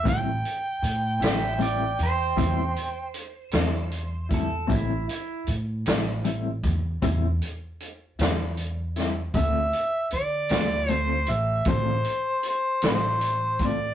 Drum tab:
HH |xxxxxxxxxxxx|xxxxxxxxxxxx|xxxxxxxxxxxx|
SD |---o-----o--|---o-----o-o|---o-----o--|
BD |o-----o----o|o----oo-----|o-----o----o|